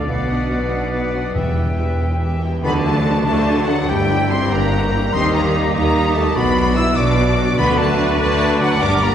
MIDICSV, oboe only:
0, 0, Header, 1, 2, 480
1, 0, Start_track
1, 0, Tempo, 422238
1, 95, Time_signature, 6, 3, 24, 8
1, 4896, Tempo, 410397
1, 10558, End_track
2, 0, Start_track
2, 0, Title_t, "Oboe"
2, 0, Program_c, 0, 68
2, 0, Note_on_c, 0, 74, 49
2, 1526, Note_off_c, 0, 74, 0
2, 1532, Note_on_c, 0, 76, 41
2, 2733, Note_off_c, 0, 76, 0
2, 3006, Note_on_c, 0, 81, 83
2, 3668, Note_off_c, 0, 81, 0
2, 3711, Note_on_c, 0, 81, 73
2, 4426, Note_on_c, 0, 79, 74
2, 4443, Note_off_c, 0, 81, 0
2, 5134, Note_off_c, 0, 79, 0
2, 5141, Note_on_c, 0, 79, 76
2, 5863, Note_on_c, 0, 75, 74
2, 5880, Note_off_c, 0, 79, 0
2, 6573, Note_off_c, 0, 75, 0
2, 6580, Note_on_c, 0, 75, 80
2, 7286, Note_on_c, 0, 74, 75
2, 7303, Note_off_c, 0, 75, 0
2, 7995, Note_off_c, 0, 74, 0
2, 8002, Note_on_c, 0, 74, 89
2, 8710, Note_off_c, 0, 74, 0
2, 8731, Note_on_c, 0, 74, 93
2, 10558, Note_off_c, 0, 74, 0
2, 10558, End_track
0, 0, End_of_file